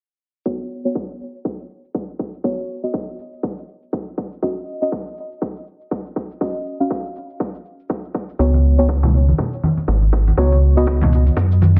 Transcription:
0.46 0.82 B3 medium
0.46 0.82 F#4 medium
0.46 0.82 C#5 medium
0.46 kick loud
0.46 cabasa medium
0.60 cabasa soft
0.71 cabasa soft
0.85 0.93 B3 medium
0.85 0.92 F#4 medium
0.85 0.92 C#5 medium
0.85 cabasa medium
0.95 kick loud
0.95 cabasa soft
1.10 cabasa soft
1.20 cabasa medium
1.35 cabasa soft
1.45 kick loud
1.45 cabasa soft
1.59 cabasa medium
1.70 cabasa soft
1.84 cabasa soft
1.95 kick loud
1.95 cabasa medium
2.09 cabasa soft
2.19 kick medium
2.19 cabasa soft
2.34 cabasa medium
2.44 2.80 B3 medium
2.44 2.80 F#4 medium
2.44 2.80 C#5 medium
2.44 kick loud
2.44 cabasa medium
2.58 cabasa soft
2.69 cabasa soft
2.83 4.40 B3 medium
2.83 4.40 F#4 medium
2.83 4.40 D#5 medium
2.83 cabasa medium
2.94 kick loud
2.94 cabasa soft
3.08 cabasa soft
3.19 cabasa medium
3.33 cabasa soft
3.43 kick loud
3.43 cabasa soft
3.58 cabasa medium
3.68 cabasa soft
3.83 cabasa soft
3.93 kick loud
3.93 cabasa medium
4.07 cabasa soft
4.18 kick medium
4.18 cabasa soft
4.32 cabasa medium
4.43 4.78 C#4 medium
4.43 4.78 F#4 medium
4.43 4.78 D#5 medium
4.43 kick loud
4.43 cabasa medium
4.57 cabasa medium
4.68 cabasa soft
4.82 4.89 C#4 medium
4.82 4.89 F#4 medium
4.82 4.89 D#5 medium
4.82 cabasa medium
4.92 kick loud
4.92 cabasa soft
5.07 cabasa soft
5.17 cabasa medium
5.32 cabasa medium
5.42 kick loud
5.42 cabasa soft
5.56 cabasa medium
5.67 cabasa medium
5.81 cabasa medium
5.91 kick loud
5.91 cabasa medium
6.06 cabasa soft
6.16 kick medium
6.16 cabasa soft
6.31 cabasa medium
6.41 6.77 C#4 medium
6.41 6.77 F#4 medium
6.41 6.77 D#5 medium
6.41 kick loud
6.41 cabasa medium
6.56 cabasa medium
6.66 cabasa soft
6.80 8.37 C#4 medium
6.80 8.37 F#4 medium
6.80 8.37 F5 medium
6.80 cabasa medium
6.91 kick loud
6.91 cabasa soft
7.05 cabasa soft
7.16 cabasa medium
7.30 cabasa soft
7.40 kick loud
7.40 cabasa soft
7.55 cabasa medium
7.65 cabasa soft
7.80 cabasa soft
7.90 kick loud
7.90 cabasa medium
8.04 cabasa soft
8.15 kick medium
8.15 cabasa medium
8.29 cabasa medium
8.39 9.33 C#2 medium
8.39 8.75 B3 medium
8.39 8.75 F#4 medium
8.39 8.75 C#5 loud
8.39 kick loud
8.39 cabasa medium
8.54 muted conga soft
8.54 cabasa soft
8.64 cabasa soft
8.79 8.86 B3 medium
8.79 8.86 F#4 medium
8.79 8.86 C#5 medium
8.79 cabasa medium
8.89 kick loud
8.89 muted conga soft
8.89 cabasa soft
9.03 high conga medium
9.03 low conga loud
9.03 cabasa soft
9.14 muted conga soft
9.14 cabasa medium
9.28 high conga medium
9.28 cabasa soft
9.38 kick loud
9.38 muted conga soft
9.38 low conga medium
9.38 cabasa soft
9.53 cabasa medium
9.63 high conga medium
9.63 cabasa soft
9.77 muted conga soft
9.77 cabasa soft
9.88 10.32 G#1 medium
9.88 kick loud
9.88 cabasa medium
10.02 muted conga soft
10.02 cabasa soft
10.13 kick medium
10.13 cabasa soft
10.28 muted conga soft
10.28 high conga medium
10.28 cabasa medium
10.37 11.31 C#2 medium
10.37 10.73 B3 medium
10.37 10.73 F#4 medium
10.37 10.73 C#5 medium
10.37 kick loud
10.37 cabasa medium
10.52 muted conga soft
10.52 cabasa soft
10.63 cabasa soft
10.77 11.80 B3 medium
10.77 11.80 F#4 medium
10.77 11.80 D#5 medium
10.77 cabasa medium
10.87 kick loud
10.87 muted conga soft
10.87 cabasa soft
11.01 high conga medium
11.01 low conga loud
11.01 cabasa soft
11.12 muted conga soft
11.12 cabasa medium
11.27 high conga medium
11.27 cabasa soft
11.37 11.80 F#2 loud
11.37 kick loud
11.37 muted conga soft
11.37 cabasa soft
11.52 cabasa medium
11.62 high conga medium
11.62 cabasa soft
11.76 muted conga soft
11.76 cabasa soft

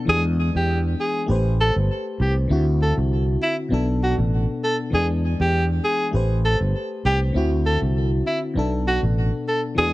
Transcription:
0.05 0.49 E2 loud
0.05 1.25 E3 medium
0.05 1.26 B3 medium
0.05 1.27 D4 medium
0.05 0.23 G#4 loud
0.10 0.16 G4 medium
0.17 1.31 G#3 medium
0.55 0.93 E2 medium
0.55 0.81 G4 medium
1.00 1.25 G#4 medium
1.26 1.70 A1 loud
1.26 2.46 A3 medium
1.26 2.47 G4 medium
1.26 2.48 B4 medium
1.31 2.49 C5 medium
1.60 1.74 A4 medium
1.76 1.88 G1 medium
2.20 2.46 C2 loud
2.20 2.35 G4 medium
2.48 2.91 D2 loud
2.48 3.68 D3 medium
2.48 3.69 C4 medium
2.48 3.69 E4 medium
2.53 3.70 F#4 medium
2.82 2.95 A4 medium
2.97 3.36 C2 medium
3.42 3.56 E4 medium
3.69 4.13 B1 loud
3.69 4.89 B2 medium
3.69 4.90 B3 medium
3.69 4.91 D4 medium
3.74 4.91 A4 medium
4.03 4.16 F#4 medium
4.18 4.45 A1 loud
4.63 4.77 A4 medium
4.90 5.34 E2 medium
4.90 6.10 E3 medium
4.90 6.11 B3 medium
4.90 6.12 D4 medium
4.90 5.07 G#4 medium
4.95 6.13 G#3 medium
5.40 5.78 E2 medium
5.40 5.66 G4 medium
5.84 6.10 G#4 medium
6.11 6.55 A1 medium
6.11 7.31 A3 medium
6.11 7.32 G4 medium
6.11 7.33 B4 medium
6.16 7.34 C5 medium
6.45 6.59 A4 medium
6.61 6.73 G1 medium
7.05 7.31 C2 medium
7.05 7.19 G4 medium
7.33 7.76 D2 loud
7.33 8.53 D3 medium
7.33 8.53 C4 medium
7.33 8.54 E4 medium
7.38 8.55 F#4 medium
7.66 7.80 A4 medium
7.82 8.20 C2 medium
8.27 8.41 E4 medium
8.54 8.97 B1 loud
8.54 9.74 B2 medium
8.54 9.75 B3 medium
8.54 9.76 D4 medium
8.59 9.76 A4 medium
8.87 9.01 F#4 medium
9.03 9.30 A1 medium
9.48 9.62 A4 medium
9.75 9.93 E2 medium
9.75 9.93 E3 medium
9.75 9.93 B3 medium
9.75 9.93 D4 medium
9.75 9.92 G#4 loud
9.80 9.86 F#4 medium
9.86 9.93 G#3 medium

